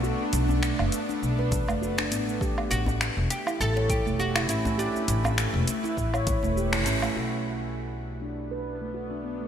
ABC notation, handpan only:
X:1
M:4/4
L:1/16
Q:"Swing 16ths" 1/4=101
K:Bm
V:1 name="Handpan"
F4 z3 D z B z A, F D B, A, | G4 z3 E z c z A, G E C A, | G4 z3 E z c z A, G E C A, | F4 z3 D z B z A, F D B, A, |]